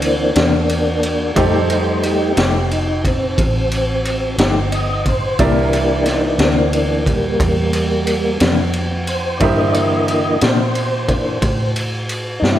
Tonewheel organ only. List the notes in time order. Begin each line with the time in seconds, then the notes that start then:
Already playing: E3 A#3 C4 D4
1.35 G3 A3 D#4 G4
1.72 C5
2.06 G4
2.40 G4
2.72 D#4
3.07 C4
4.72 D#5
5.09 C5
5.39 E3 A#3 D4 A#4
5.73 G4
6.04 D#4
6.39 C4
6.73 E3 A#3 D4
7.08 G3 A#3
9.08 C5
9.37 D3 E3 A#3 D5
9.42 D#5
9.71 D5 D#5
10.41 C5
11.08 E3 A#3 D4
12.40 D#4
12.44 E4